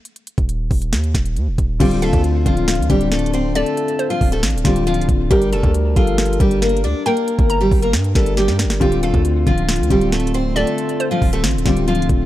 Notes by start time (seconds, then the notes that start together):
0.05 closed hi-hat
0.16 closed hi-hat
0.27 closed hi-hat
0.38 D#1, kick, closed hi-hat
0.49 closed hi-hat
0.71 D#1, kick, open hi-hat
0.82 closed hi-hat
0.93 D#2, snare, closed hi-hat
1.04 closed hi-hat
1.15 D#1, kick, snare, closed hi-hat
1.26 closed hi-hat
1.36 D#2, closed hi-hat
1.47 D#1
1.58 D#1, kick, closed hi-hat
1.80 D1 D3 G3 C4 F4 G4, kick, closed hi-hat, crash
1.91 closed hi-hat
2.02 D#1 A3 A4 F5, closed hi-hat
2.13 D2, kick, closed hi-hat
2.24 closed hi-hat
2.45 D1 D3 F3 C4 F4, kick, closed hi-hat
2.57 closed hi-hat
2.68 snare, closed hi-hat
2.75 D2, closed hi-hat
2.82 closed hi-hat
2.89 D1 D3 G3 C4 D4 G4, kick, closed hi-hat
3.01 closed hi-hat
3.12 A3 A4, snare, closed hi-hat
3.19 closed hi-hat
3.26 closed hi-hat
3.33 C4 C5, closed hi-hat
3.55 A3 A4 D5, closed hi-hat
3.66 closed hi-hat
3.77 closed hi-hat
3.88 closed hi-hat
3.99 C5, closed hi-hat
4.10 F3 F4
4.21 D1, kick, open hi-hat
4.32 A3 A4, closed hi-hat
4.43 A1, snare, closed hi-hat
4.50 D1, closed hi-hat
4.58 closed hi-hat
4.64 D1 D3 G3 C4 F4 G4, kick, snare, closed hi-hat
4.76 closed hi-hat
4.87 F3 F4, closed hi-hat
4.94 C1, closed hi-hat
5.01 closed hi-hat
5.09 D1, kick, closed hi-hat
5.31 G1 G3 D4 G4 A#4, kick, closed hi-hat
5.42 closed hi-hat
5.53 F1 A3 A4 A5, closed hi-hat
5.63 D2, kick, closed hi-hat
5.74 closed hi-hat
5.96 G1 F3 G3 D4 F4 A4, kick, closed hi-hat
6.07 closed hi-hat
6.18 snare, closed hi-hat
6.26 closed hi-hat
6.33 closed hi-hat
6.39 G1 G3 D4 G4 A#4, kick, closed hi-hat
6.51 closed hi-hat
6.62 A#3 A#4, snare, closed hi-hat
6.69 closed hi-hat
6.77 closed hi-hat
6.84 D2 D4 D5, closed hi-hat
7.06 A#3 A#4 G5, closed hi-hat
7.17 closed hi-hat
7.28 closed hi-hat
7.39 G1, kick, closed hi-hat
7.50 A#5, closed hi-hat
7.61 G3 G4
7.71 G1, kick, open hi-hat
7.82 A#3 A#4, closed hi-hat
7.93 G2, snare, closed hi-hat
8.04 closed hi-hat
8.15 G1 G3 A3 D4 A4 A#4, kick, snare, closed hi-hat
8.26 closed hi-hat
8.37 G3 G4, snare, closed hi-hat
8.48 G2, snare
8.59 snare, closed hi-hat
8.65 G1
8.70 snare
8.80 D1 D3 G3 A3 C4 F4 G4, kick, closed hi-hat
8.92 closed hi-hat
9.03 D#1 A3 A4 F5, closed hi-hat
9.14 D2, kick, closed hi-hat
9.25 closed hi-hat
9.46 D1 D3 F3 C4 F4, kick, closed hi-hat
9.58 closed hi-hat
9.69 snare, closed hi-hat
9.76 D2, closed hi-hat
9.83 closed hi-hat
9.89 D1 D3 G3 C4 F4 G4, kick, closed hi-hat
10.01 closed hi-hat
10.12 A3 A4, snare, closed hi-hat
10.20 closed hi-hat
10.27 closed hi-hat
10.34 C4 C5, closed hi-hat
10.56 A3 A4 D5, closed hi-hat
10.67 closed hi-hat
10.78 closed hi-hat
10.89 closed hi-hat
11.00 C5, closed hi-hat
11.11 F3 F4
11.22 D1, kick, open hi-hat
11.33 A3 A4, closed hi-hat
11.44 A1, snare, closed hi-hat
11.51 D1, closed hi-hat
11.58 closed hi-hat
11.65 D1 D3 G3 C4 F4 G4, kick, snare, closed hi-hat
11.77 closed hi-hat
11.88 F3 F4, closed hi-hat
11.95 C1, closed hi-hat
12.02 closed hi-hat
12.09 D1, kick, closed hi-hat